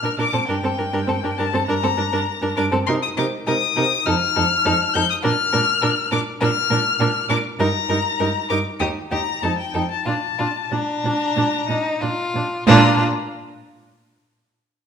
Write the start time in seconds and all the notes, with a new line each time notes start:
Already playing: F6
0.03 A#2 D4 A#4
0.18 A#2 D4 A#4 D6
0.33 A#2 C4 A4
0.48 G2 D4 A#4 G5
0.64 G2 C4 A4
0.78 G2 D4 A#4
0.93 G2 D4 A#4
1.07 G2 C4 A4
1.23 G2 D4 A#4
1.38 G2 D4 A#4 A5
1.53 G2 C4 A4
1.67 G2 D4 A#4 A#5
1.83 G2 C4 A4
1.97 G2 D4 A#4
2.12 G2 D4 A#4
2.42 G2 D4 A#4
2.57 G2 D4 A#4 D6
2.72 G2 C4 A4
2.87 C3 D#4 A#4 C6
3.03 D#6
3.17 C3 D#4 A#4 D6
3.47 C3 D#4 A#4 D#6
3.76 C3 D#4 A#4
4.06 F2 D#4 A4 F6
4.36 F2 D#4 A4
4.65 F2 D#4 A4
4.94 F2 D#4 A4 G6
5.10 D#6
5.23 A#2 D4 A#4 F6
5.53 A#2 D4 A#4
5.82 A#2 D4 A#4
6.11 A#2 D4 A#4 D6
6.41 A#2 D4 A#4 F6
6.70 A#2 D4 A#4
7.00 A#2 D4 A#4
7.29 A#2 D4 A#4 D6
7.59 G2 D#4 A#4 A#5
7.89 G2 D#4 A#4
8.20 G2 D#4 A#4
8.50 G2 D#4 A#4 D6
8.80 D#2 D#4 G4 D#6
9.11 D#2 D#4 G4 A#5
9.43 F2 D#4 A4 A5
9.58 G5
9.74 F2 D#4 A4
9.91 A5
10.06 A#2 D4 F4 A5
10.39 A#2 D4 F4
10.72 A#2 D4 A#5
11.04 A#2 D4
11.37 A#2 D4
11.68 A#2 D4 D#4
12.01 A#2 D4 F4
12.35 A#2 D4
12.67 A#2 D4 F4 A#5